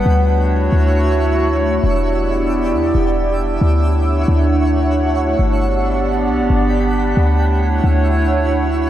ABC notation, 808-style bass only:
X:1
M:4/4
L:1/16
Q:1/4=135
K:D
V:1 name="808-style bass" clef=bass
D,,6 D,,8- D,,2 | E,,,8 E,,2 E,,,6 | D,,6 D,,8- D,,2 | G,,,8 B,,, G,,, G,,,6 |
D,,6 D,,8- D,,2 |]